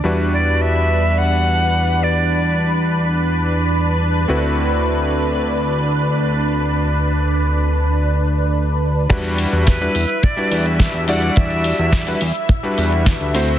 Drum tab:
CC |----------------|----------------|----------------|----------------|
HH |----------------|----------------|----------------|----------------|
SD |----------------|----------------|----------------|----------------|
BD |----------------|----------------|----------------|----------------|

CC |x---------------|----------------|
HH |xxoxxxoxxxoxxxox|xxoxxooxxxoxxxox|
SD |----o-------o---|----o-------o---|
BD |o---o---o---o---|o---o---o---o---|